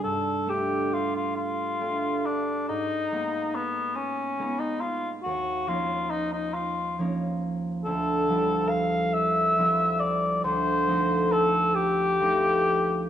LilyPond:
<<
  \new Staff \with { instrumentName = "Cor anglais" } { \time 6/8 \key g \phrygian \tempo 4. = 46 a'8 g'8 f'16 f'16 f'4 d'8 | ees'4 ces'8 des'8. ees'16 f'8 | fis'8 f'8 ees'16 ees'16 f'8 r4 | a'4 f''8 e''4 d''8 |
c''4 a'8 g'4. | }
  \new Staff \with { instrumentName = "Harp" } { \time 6/8 \key g \phrygian <g, g d' g'>8 <a d' g'>4. <a d' g'>4 | aes,8 <aes bes ces' ees'>4. <aes bes ces' ees'>4 | ees,8 <f bes des' ees'>4. <f bes des' ees'>4 | d,8 <f g c' e'>4. <f g c' e'>4 |
d,8 <f a c' ees'>4. <f a c' ees'>4 | }
>>